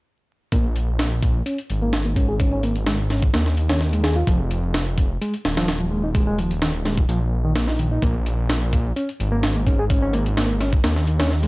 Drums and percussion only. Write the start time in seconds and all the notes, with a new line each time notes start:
0.52 kick, closed hi-hat
0.76 closed hi-hat
0.99 snare, closed hi-hat
1.23 kick, closed hi-hat
1.46 closed hi-hat
1.58 closed hi-hat
1.70 closed hi-hat
1.93 snare, closed hi-hat
2.16 kick, closed hi-hat
2.40 kick, closed hi-hat
2.63 closed hi-hat
2.76 closed hi-hat
2.87 snare, closed hi-hat
3.10 snare, closed hi-hat
3.22 kick
3.34 snare, closed hi-hat
3.46 snare
3.57 closed hi-hat
3.69 snare, closed hi-hat
3.81 snare
3.93 closed hi-hat
4.04 snare, closed hi-hat
4.27 kick, closed hi-hat
4.51 closed hi-hat
4.74 snare, closed hi-hat
4.98 kick, closed hi-hat
5.21 closed hi-hat
5.34 closed hi-hat
5.45 snare, closed hi-hat
5.57 snare, closed hi-hat
5.68 snare, closed hi-hat
6.15 kick, closed hi-hat
6.39 closed hi-hat
6.51 closed hi-hat
6.62 snare, closed hi-hat
6.85 snare, closed hi-hat
6.97 kick
7.09 closed hi-hat
7.56 snare, closed hi-hat
7.68 snare
7.79 closed hi-hat
8.02 kick, closed hi-hat
8.26 closed hi-hat
8.50 snare, closed hi-hat
8.73 kick, closed hi-hat
8.96 closed hi-hat
9.09 closed hi-hat
9.20 closed hi-hat
9.43 snare, closed hi-hat
9.67 kick, closed hi-hat
9.90 kick, closed hi-hat
10.13 closed hi-hat
10.26 closed hi-hat
10.37 snare, closed hi-hat
10.61 snare, closed hi-hat
10.73 kick
10.84 snare, closed hi-hat
10.96 snare
11.07 closed hi-hat
11.20 snare, closed hi-hat
11.31 snare
11.43 closed hi-hat